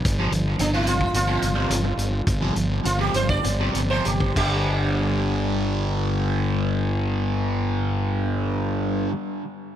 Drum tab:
CC |----------------|--------------x-|----------------|----------------|
HH |x-x-x-x-x-x-x-x-|x-x-x-x-x-x-x---|----------------|----------------|
BD |o------o--------|o------o-----oo-|----------------|----------------|